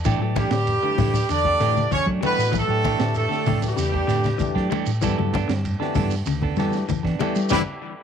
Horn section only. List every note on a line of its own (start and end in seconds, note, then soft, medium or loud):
0.38 1.26 G4 loud
1.31 1.88 D5 loud
1.93 2.07 C#5 medium
2.25 2.53 B4 loud
2.58 3.16 A4 loud
3.17 3.60 A4 medium
3.67 4.70 G4 medium
7.52 7.59 E4 loud
7.52 7.59 G4 loud
7.52 7.60 B4 loud